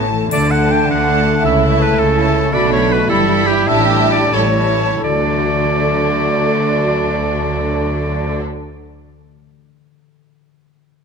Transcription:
Already playing: A1 A2 E3 A3 B3 E4 A4 C#5 E5 A5
0.02 E4
0.12 E3 A3
0.22 A3
0.31 D2 D3 A3 D4 D5 A5, triangle
0.41 A3
0.50 A3 D4 F#5 A5
0.60 A4
0.70 D4 G5
0.80 D5
0.87 D2 D3 D4 F#5 A5
0.99 D5
1.07 A3 D4 A4 A5
1.17 D4
1.26 A3
1.35 D4
1.43 C#2 C#3 E4 E5
1.52 C#4
1.62 A3 E4 A5
1.71 E4
1.79 A4 B4
1.89 E4
1.96 C#2 C#3 C#4 A4 E5
2.07 A5
2.16 A3 E4 A4 A5
2.25 E4
2.34 C#4
2.43 A3
2.51 B1 B2 A3 D4 F#4 D5 B5
2.62 F#3
2.69 A3 F#4 C#5 B5
2.80 F#4
2.89 B4
3.00 A4
3.07 G1 G2 G3 E4 A4 B5
3.19 E3
3.28 G3 E4 B5
3.38 E4
3.47 G4 B4
3.57 G4
3.66 A1 A2 G3 D4 E4 G4 E5 A5
3.78 E3
3.88 G3 E4 A5
4.00 E4
4.11 D5
4.22 G4
4.32 A1 A2 G3 E4 A4 C#5 A5
4.44 E3
4.56 G3 E4 A5
4.68 E4
4.80 E5
4.93 G4
5.04 D2 D3 F#3 A3 D4 F#4 A4 D5
5.11 A3
5.19 D4
5.26 F#4
5.32 D5
5.40 F#5

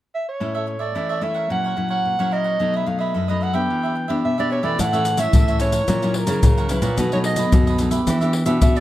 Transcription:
0.15 E5
0.28 C#5
0.40 A2 A3 C#4 E4 A4 C#5 E5
0.55 A4 C#5 E5
0.67 muted cavaquinho stroke
0.79 A4 C#5 D5 E5
0.95 E3 A3 C#4 E4 A4 C#5 E5
1.09 A4 C#5 E5
1.21 A3 C#4 E4 A4 C#5 E5
1.34 A#4 C#5 F#5
1.50 A#2 F#3 C#4 E4 F#5
1.64 A#4 C#5 F#5
1.77 F#3 C#4 E4, muted cavaquinho stroke
1.89 A#4 C#5 F#5
2.05 A#2
2.19 F#3 C#4 E4 A#4 C#5 F#5
2.31 E4 A#4 C#5 D#5 F#5
2.44 A#4 C#5 F#5
2.60 B2 F#3 A3 D#4 A4 B4 D#5
2.74 B4 D#5 E5
2.86 F#3 A3 D#4 F5, muted cavaquinho stroke
2.99 B4 D#5 E5
3.14 F#2 A4 B4 D#5
3.28 F#3 A3 D#4 B4 D#5
3.41 A4 B4 D#5 F#5
3.53 B3 D4 G4 B4 E5 G5
3.70 E3
3.83 G4 B4 E5
3.95 muted cavaquinho stroke
4.08 B3 D4 G4 B4 E5
4.25 B2 E5
4.38 B3 D4 G4 B4 D5 E5
4.50 D4 G4 B4 C#5 E5
4.63 E3 A3 C#4 G4 B4 D5 E5
4.78 A2 E4 A4 C#5 E5 F#5, pandeiro, maracas, surdo
4.93 E3 A3 C#4 A4 C#5 E5, pandeiro, maracas
5.05 muted cavaquinho stroke, pandeiro, maracas
5.17 E3 A3 C#4 A4 C#5 E5, pandeiro, maracas
5.33 A2 E3 E4 A4 C#5 E5, pandeiro, maracas, surdo
5.48 A4 C#5 E5, pandeiro, maracas
5.60 E3 A3 C#4 E4 A4 C#5 E5, pandeiro, maracas
5.72 A#4 C#5 F#5, pandeiro, maracas
5.88 A#2 F#3 C#4 E4, pandeiro, maracas, surdo
6.02 F#3 C#4 E4 A#4 C#5 F#5, pandeiro, maracas
6.14 A#4, muted cavaquinho stroke, pandeiro
6.27 C#3 F#3 C#4 E4 A#4 C#5 F#5, pandeiro, maracas
6.43 A#2 C#3, pandeiro, maracas, surdo
6.57 A#4 C#5 F#5, pandeiro, maracas
6.69 F#3 C#4 E4 A#4 B4 C#5 F#5, pandeiro, maracas
6.82 A#2 A#4 C#5 F#5, pandeiro, maracas
6.98 B2 F#3 A3 D#4 A4 B4 D#5, pandeiro, maracas, surdo
7.12 F#3 A3 D#4 B4 C#5 D#5, pandeiro, maracas
7.24 D#5, muted cavaquinho stroke, pandeiro
7.36 F#3 A3 D#4 B4 D#5, pandeiro, maracas
7.52 F#2 B2 A4 B4 D#5, pandeiro, maracas, surdo
7.67 B4 D#5, pandeiro, maracas
7.79 F#3 A3 D#4 A4 B4 D#5, pandeiro, maracas
7.91 G4 B4 E5, pandeiro, maracas
8.07 E3 B3 D4 G4, pandeiro, maracas, surdo
8.21 B3 D4 G4 B4 E5, pandeiro, maracas
8.33 pandeiro
8.46 B2 B3 D4 G4 B4 E5, pandeiro, maracas
8.62 B2 E5, pandeiro, maracas, surdo
8.75 B4 D5 E5, pandeiro, maracas

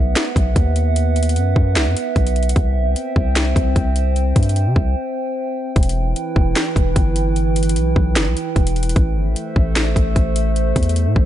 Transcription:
Already playing: B1 B3 B4 E5 F#5
0.16 finger snap, snare, closed hi-hat
0.36 B1, kick, closed hi-hat
0.56 D#2, kick, closed hi-hat
0.76 closed hi-hat
0.96 closed hi-hat
1.16 closed hi-hat
1.23 closed hi-hat
1.29 closed hi-hat
1.36 F#2, closed hi-hat
1.56 F#2, kick
1.76 C2, finger snap, snare, closed hi-hat
1.87 F#2
1.97 closed hi-hat
2.16 B1, kick, closed hi-hat
2.27 closed hi-hat
2.36 closed hi-hat
2.43 closed hi-hat
2.49 closed hi-hat
2.56 C2 C4 C5 G5, kick, closed hi-hat
2.76 B1
2.87 C2
2.96 closed hi-hat
3.16 C2, kick
3.36 finger snap, snare, closed hi-hat
3.56 C2, kick, closed hi-hat
3.76 C2, kick, closed hi-hat
3.96 closed hi-hat
4.16 closed hi-hat
4.36 G2, kick, closed hi-hat
4.43 closed hi-hat
4.49 closed hi-hat
4.56 closed hi-hat
4.67 C3
4.76 C2, kick
5.76 E1 E3 E4 B4, kick, closed hi-hat
5.83 closed hi-hat
5.89 closed hi-hat
6.16 closed hi-hat
6.36 E1, kick
6.56 finger snap, snare, closed hi-hat
6.76 E1, kick, closed hi-hat
6.96 G1, kick, closed hi-hat
7.16 closed hi-hat
7.36 closed hi-hat
7.56 closed hi-hat
7.63 closed hi-hat
7.69 closed hi-hat
7.76 B1, closed hi-hat
7.96 B1, kick
8.16 F#1, finger snap, snare, closed hi-hat
8.27 B1
8.37 closed hi-hat
8.56 E1, kick, closed hi-hat
8.67 closed hi-hat
8.76 closed hi-hat
8.83 closed hi-hat
8.89 closed hi-hat
8.96 A1 A3 A4 C5 E5, kick, closed hi-hat
9.16 G1
9.27 A1
9.36 closed hi-hat
9.56 A1, kick
9.76 finger snap, snare, closed hi-hat
9.96 A1, kick, closed hi-hat
10.16 A1, kick, closed hi-hat
10.36 closed hi-hat
10.56 closed hi-hat
10.76 E2, kick, closed hi-hat
10.83 closed hi-hat
10.89 closed hi-hat
10.96 closed hi-hat
11.07 A2
11.16 A1, kick

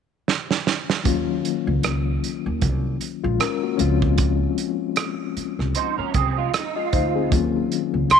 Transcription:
0.28 snare
0.51 snare
0.67 snare
0.90 snare
1.04 D#2 D#3 F#3 A#3 C#4 F4, kick, closed hi-hat
1.45 closed hi-hat
1.67 C#2
1.83 C#2, cross-stick, closed hi-hat
2.24 closed hi-hat
2.46 D#2
2.62 C2, kick, closed hi-hat
3.01 closed hi-hat
3.24 A#1 G#3 F4
3.40 C#4 A#4, cross-stick, closed hi-hat
3.63 A#3 F#4
3.77 C#2 F3 G#3 C4 C#4 F4, closed hi-hat
4.02 kick
4.18 kick, closed hi-hat
4.58 closed hi-hat
4.96 cross-stick, closed hi-hat
5.37 muted upright bass stroke, closed hi-hat
5.59 C2, cross-stick
5.75 D#4 C5, closed hi-hat
5.98 C#4 A#4, muted upright bass stroke
6.14 C2 C4 G#4, kick, closed hi-hat
6.37 G#3 F4
6.54 D#4, cross-stick, closed hi-hat
6.76 G#3 F4 D#5
6.93 D2 D#4 C5, kick, closed hi-hat
7.15 C4 G#4
7.30 D#2 D#3 F#3 A#3 C#4 F4, kick, closed hi-hat
7.72 closed hi-hat
7.94 C#2
8.10 C#2 C6, cross-stick, closed hi-hat

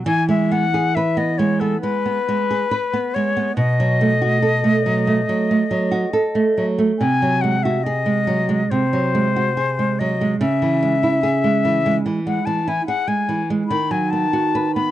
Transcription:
0.06 E3 G#5
0.29 G#3 E5
0.51 B3 F#5
0.74 G#4
0.95 B4 E5
1.17 B3 D#5
1.38 G#3 C#5
1.60 B3 A4
1.81 G#3 B4
2.06 B3
2.29 G#3
2.51 G#4
2.71 B4
2.93 B3
3.14 G#3 C#5
3.37 B3
3.57 B2 D#5
3.80 F#3
4.01 A3
4.21 F#4
4.42 A4
4.64 A3
4.86 F#3
5.07 A3
5.29 F#3
5.51 A3
5.71 F#3
5.91 F#4
6.13 A4
6.35 A3
6.58 F#3
6.78 A3
6.99 C3 G#5
7.22 F#3
7.41 G#3 F#5
7.63 F#4 E5
7.83 G#4 D#5
8.06 G#3
8.27 F#3
8.49 G#3
8.71 C3 C5
8.93 F#3
9.15 G#3
9.36 F#4
9.57 G#4
9.79 G#3
9.99 F#3 D#5
10.21 G#3
10.40 C#3 E5
10.62 E3
10.83 G#3
11.03 E4
11.23 G#4
11.44 G#3
11.65 E3
11.86 G#3
12.06 E3
12.27 G#3 F#5
12.46 E3 A5
12.67 E4 G#5
12.87 G#4 F#5
13.08 G#3 G#5
13.29 E3
13.50 G#3
13.68 D#3 B5
13.91 F#3 G#5
14.11 B3 A5
14.33 F#4
14.55 B4
14.75 B3 B5

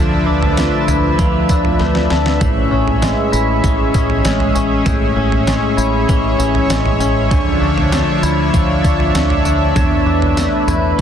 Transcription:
Already playing: D2 D3 F3 A3 D4 E4 B4 D5 E5
0.26 D2 D4
0.43 floor tom
0.57 A3, snare, tambourine
0.88 D2 E4, floor tom, tambourine
1.18 D2 F3, kick, floor tom, tambourine
1.49 D2 D4, kick, tambourine
1.65 floor tom
1.79 D2 A3, snare
1.95 snare
2.10 D2 D4, snare
2.26 snare
2.41 A1 A2 C#4 G#4 C#5, kick, floor tom, tambourine
2.71 A1 C#4
2.88 floor tom
3.02 G#3, snare, tambourine
3.32 A1 E4, tambourine
3.63 A1 E3, kick, floor tom, tambourine
3.94 A1 C#4, kick, tambourine
4.10 floor tom
4.25 A1 G#3, snare, tambourine
4.40 floor tom
4.55 A1 C#4, tambourine
4.86 A1 A2, kick, floor tom, tambourine
5.16 A1 C#4
5.32 floor tom
5.47 G#3, snare, tambourine
5.77 A1 E4, tambourine
6.08 A1 E3, kick, floor tom, tambourine
6.39 A1 C#4, tambourine
6.55 floor tom
6.69 A1 G#3, snare, tambourine
6.86 floor tom
7.00 A1 C#4, tambourine
7.31 D2 D3 F3 D4 E5, kick, floor tom, tambourine
7.61 D2 D4
7.78 floor tom
7.92 A3, snare, tambourine
8.23 D2 E4, tambourine
8.53 D2 F3, kick, floor tom, tambourine
8.84 D2 D4, kick, tambourine
9.00 floor tom
9.15 D2 A3, snare, tambourine
9.30 floor tom
9.45 D2 D4, tambourine
9.76 E2 B4, kick, floor tom, tambourine
10.06 E2 D4
10.22 floor tom
10.37 A3, snare, tambourine
10.68 E2 E4, floor tom, tambourine
10.98 E3

